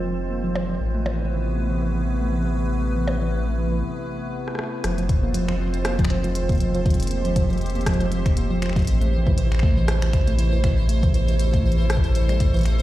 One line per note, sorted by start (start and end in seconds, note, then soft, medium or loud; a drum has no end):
0.00 0.78 F1 medium
0.00 0.77 D#3 medium
0.00 0.77 G#3 medium
0.00 0.77 C4 medium
0.00 0.77 F4 medium
0.00 0.77 C5 medium
0.05 0.12 F3 medium
0.30 0.42 A#3 medium
0.44 0.53 F3 medium
0.55 0.62 F3 medium
0.55 percussion blips medium
0.69 0.75 F3 medium
0.81 3.83 A1 medium
0.81 4.80 C3 medium
0.81 4.80 A3 medium
0.81 4.80 B3 medium
0.81 4.80 E4 medium
0.81 4.80 B4 medium
0.95 1.04 A3 medium
1.06 1.17 E3 medium
1.06 percussion blips medium
1.20 1.25 E3 medium
1.31 1.38 E3 medium
1.56 1.68 A3 medium
1.70 1.79 E3 medium
1.81 1.88 E3 medium
1.95 2.01 E3 medium
2.21 2.30 A3 medium
2.32 2.43 E3 medium
2.46 2.51 E3 medium
2.57 2.64 E3 medium
2.82 2.94 A3 medium
2.96 3.05 E3 medium
3.07 3.14 E3 medium
3.07 percussion blips medium
3.21 3.27 E3 medium
3.47 3.56 A3 medium
3.58 3.69 E3 medium
3.72 3.77 E3 medium
4.48 cross-stick soft
4.55 cross-stick soft
4.59 cross-stick medium
4.64 cross-stick soft
4.84 8.85 F1 medium
4.84 8.83 D#3 medium
4.84 4.91 F3 medium
4.84 8.83 G#3 medium
4.84 8.83 C4 medium
4.84 6.84 F4 medium
4.84 8.83 C5 medium
4.84 12.82 C5 medium
4.84 cross-stick medium
4.84 closed hi-hat loud
4.98 5.03 F3 medium
4.98 closed hi-hat soft
5.09 kick loud
5.09 closed hi-hat medium
5.23 5.32 A#3 medium
5.34 5.46 F3 medium
5.34 closed hi-hat loud
5.49 5.54 F3 medium
5.49 finger snap medium
5.60 5.67 F3 medium
5.74 closed hi-hat soft
5.85 5.96 A#3 medium
5.85 cross-stick loud
5.85 closed hi-hat medium
5.99 6.08 F3 medium
5.99 kick loud
5.99 closed hi-hat soft
6.05 finger snap medium
6.10 6.17 F3 medium
6.10 finger snap soft
6.10 closed hi-hat medium
6.24 6.29 F3 medium
6.24 closed hi-hat soft
6.35 closed hi-hat medium
6.49 6.58 A#3 medium
6.49 kick loud
6.49 closed hi-hat soft
6.52 closed hi-hat soft
6.55 closed hi-hat soft
6.58 6.72 F3 medium
6.58 closed hi-hat soft
6.61 closed hi-hat medium
6.75 6.80 F3 medium
6.75 closed hi-hat soft
6.86 6.93 F3 medium
6.86 8.85 G4 medium
6.86 kick loud
6.86 closed hi-hat soft
6.90 closed hi-hat medium
6.94 closed hi-hat medium
7.00 closed hi-hat medium
7.03 closed hi-hat medium
7.07 closed hi-hat medium
7.11 7.22 A#3 medium
7.11 closed hi-hat medium
7.25 7.34 F3 medium
7.25 closed hi-hat soft
7.36 7.43 F3 medium
7.36 kick loud
7.36 closed hi-hat loud
7.50 7.56 F3 medium
7.50 closed hi-hat soft
7.53 closed hi-hat soft
7.58 closed hi-hat soft
7.61 closed hi-hat soft
7.66 closed hi-hat soft
7.70 closed hi-hat soft
7.75 7.84 A#3 medium
7.75 closed hi-hat soft
7.81 closed hi-hat soft
7.86 7.98 F3 medium
7.86 kick loud
7.86 cross-stick loud
7.86 closed hi-hat loud
7.94 closed hi-hat soft
8.00 8.06 F3 medium
8.00 closed hi-hat soft
8.12 8.19 F3 medium
8.12 closed hi-hat medium
8.26 finger snap soft
8.26 kick loud
8.26 closed hi-hat soft
8.37 8.48 A#3 medium
8.37 closed hi-hat medium
8.51 8.60 F3 medium
8.62 8.69 F3 medium
8.62 finger snap soft
8.62 closed hi-hat medium
8.66 finger snap soft
8.69 finger snap soft
8.73 8.82 F3 medium
8.73 finger snap soft
8.73 kick loud
8.76 finger snap soft
8.76 closed hi-hat soft
8.79 finger snap soft
8.79 closed hi-hat soft
8.82 finger snap soft
8.82 closed hi-hat soft
8.85 12.82 A1 medium
8.85 12.82 C3 medium
8.85 finger snap soft
8.85 closed hi-hat soft
8.87 12.82 B2 medium
8.87 12.82 A3 medium
8.87 12.82 E4 medium
8.87 10.87 C5 medium
8.87 closed hi-hat medium
8.91 closed hi-hat soft
8.94 closed hi-hat soft
8.98 9.10 A3 medium
8.98 closed hi-hat soft
9.01 closed hi-hat soft
9.12 9.24 E3 medium
9.26 9.32 E3 medium
9.26 kick loud
9.38 9.45 E3 medium
9.38 closed hi-hat loud
9.52 finger snap medium
9.55 finger snap soft
9.59 9.74 A3 medium
9.59 finger snap soft
9.59 kick loud
9.77 9.86 E3 medium
9.88 9.95 E3 medium
9.88 cross-stick loud
9.88 closed hi-hat loud
10.02 10.08 E3 medium
10.02 finger snap medium
10.02 closed hi-hat soft
10.13 finger snap soft
10.13 kick loud
10.13 closed hi-hat medium
10.27 10.36 A3 medium
10.27 closed hi-hat soft
10.38 10.50 E3 medium
10.38 closed hi-hat medium
10.53 10.58 E3 medium
10.64 10.71 E3 medium
10.64 finger snap medium
10.64 kick loud
10.64 closed hi-hat medium
10.89 11.00 A3 medium
10.89 12.82 A4 medium
10.89 closed hi-hat loud
11.03 11.12 E3 medium
11.03 kick loud
11.03 closed hi-hat soft
11.14 11.21 E3 medium
11.14 closed hi-hat medium
11.28 11.34 E3 medium
11.28 closed hi-hat soft
11.39 closed hi-hat loud
11.53 11.62 A3 medium
11.53 kick loud
11.53 closed hi-hat soft
11.64 11.76 E3 medium
11.72 closed hi-hat soft
11.79 11.84 E3 medium
11.90 11.97 E3 medium
11.90 cross-stick loud
11.90 closed hi-hat medium
11.97 kick loud
12.04 closed hi-hat soft
12.15 12.27 E3 medium
12.15 closed hi-hat medium
12.29 12.35 G3 medium
12.29 finger snap soft
12.29 closed hi-hat soft
12.40 kick loud
12.40 closed hi-hat medium
12.54 12.63 E3 medium
12.54 closed hi-hat soft
12.57 closed hi-hat soft
12.59 closed hi-hat soft
12.61 closed hi-hat soft
12.63 finger snap soft
12.63 closed hi-hat soft
12.66 closed hi-hat medium